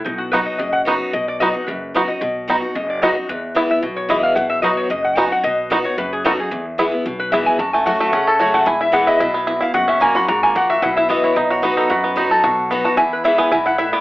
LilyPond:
<<
  \new Staff \with { instrumentName = "Resonator guitar played with a steel bar" } { \time 4/4 \key b \mixolydian \tempo 4 = 223 dis'8 fis'8 b'8 dis''8 dis''8 fis''8 r4 | dis''8 d''8 dis''4 b'4. dis''8 | r2 dis''8 d''8 dis''4 | b'4. e''8 r8 cis''8 dis''8 f''8 |
fis''8 e''8 dis''8 cis''8 dis''8 fis''8 gis''8 fis''8 | dis''4. cis''8 b'8 gis'8 a'8 gis'8~ | gis'8 r2 b'8 e''8 gis''8 | a''8 gis''8 fis''8 e''8 fis''8 a'8 cis''8 fis''8 |
gis''8 e''8 fis''8 dis''8 e''8 r4 f''8 | fis''8 e''8 gis''8 b''8 ais''8 gis''8 fis''8 e''8 | fis''8 e''8 dis''8 cis''8 dis''8 cis''8 b'8 a'8 | b'4. r2 a''8 |
gis''8 b'8 e''8 gis''8 gis''8 fis''8 e''8 d''8 | }
  \new Staff \with { instrumentName = "Five-string banjo" } { \time 4/4 \key b \mixolydian r4 <b dis' fis'>8 r4. <b dis' fis'>8 r8 | r4 <b dis' fis'>8 r4. <b dis' fis'>8 r8 | r4 <b dis' fis'>8 r4. <b dis' fis'>8 r8 | r4 <b e'>8 r4. <b e'>8 r8 |
r4 <b dis' fis'>8 r4. <b dis' fis'>8 r8 | r4 <b dis' fis'>8 r4. <b dis' fis'>8 r8 | r4 <b e'>8 r4. <b e'>8 r8 | fis'8 a8 fis'8 a8 cis'8 a'8 fis'8 a8 |
e'8 e'8 b8 e'8 e'8 b8 e'8 e'8 | fis'8 cis'8 ais8 fis'8 fis'8 ais8 fis'8 fis'8 | e'8 e'8 b8 e'8 dis'8 fis'8 b8 dis'8 | fis'8 b8 dis'8 a'8 fis'4 b8 fis'8 |
e'4 e'8 b8 e'8 e'8 e'8 b8 | }
  \new Staff \with { instrumentName = "Steel-string acoustic guitar" } { \time 4/4 \key b \mixolydian << { r4 <fis b dis' fis'>4 r4 <fis b dis' fis'>4 | r4 <fis b dis' fis'>8 <dis' fis'>8 r4 <fis b dis' fis'>8 <dis' fis'>8 | r4 <fis b dis' fis'>8 <dis' fis'>8 r4 <fis b dis' fis'>8 <dis' fis'>8 | r4 <e gis b e'>8 <b e'>8 r4 <e gis b e'>4 |
r4 <fis b dis' fis'>4 r4 <fis b dis' fis'>8 <dis' fis'>8 | r4 <fis b dis' fis'>8 <dis' fis'>8 r4 <fis b dis' fis'>8 <dis' fis'>8 | r4 <e gis b e'>8 <b e'>8 r4 <e gis b e'>4 | r4 <fis a cis' fis'>4 r4 <fis a cis' fis'>4 |
r4 <e gis b e'>4 r2 | r4 <fis ais cis' fis'>8 <cis' fis'>8 r2 | r4 <e b e' fis'>4 r4 <fis b dis' fis'>4 | r4 <fis b dis' fis'>8 <dis' fis'>8 r4 <fis b dis' fis'>4 |
r4 <e gis b e'>4 r2 | } \\ { b,2 fis,2 | b,2 fis,2 | b,2 fis,2 | e,2 b,2 |
b,2 fis,2 | b,2 fis,2 | e,2 b,2 | fis,2 cis2 |
e,2 b,4 e,4 | fis,2 gis,4 ais,4 | b,2 b,2 | fis,2 b,2 |
e,2 gis,4 a,4 | } >> }
  \new Staff \with { instrumentName = "Upright bass" } { \clef bass \time 4/4 \key b \mixolydian b,,2 fis,,2 | b,,2 fis,,2 | b,,2 fis,,2 | e,2 b,,2 |
b,,2 fis,,2 | b,,2 fis,,2 | e,2 b,,2 | fis,,2 cis,2 |
e,,2 b,,2 | fis,,2 gis,,4 ais,,4 | b,,2 b,,2 | fis,2 b,,2 |
e,2 b,,2 | }
>>